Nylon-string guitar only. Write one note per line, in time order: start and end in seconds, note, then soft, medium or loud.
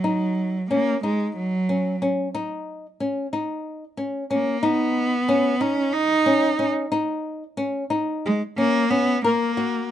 0.04 0.56 D#4 medium
0.71 0.96 C#4 medium
1.03 1.55 D#4 medium
1.69 1.95 C#4 medium
2.02 2.27 C#4 medium
2.35 2.86 D#4 medium
3.00 3.26 C#4 medium
3.33 3.84 D#4 medium
3.97 4.23 C#4 medium
4.31 4.56 C#4 medium
4.63 5.14 D#4 medium
5.29 5.54 C#4 medium
5.61 6.12 D#4 medium
6.26 6.52 C#4 medium
6.59 6.84 C#4 medium
6.92 7.43 D#4 medium
7.57 7.83 C#4 medium
7.90 8.42 D#4 medium
8.58 8.84 C#4 medium
8.91 9.17 C#4 medium
9.24 9.50 A#4 medium
9.57 9.91 F#4 medium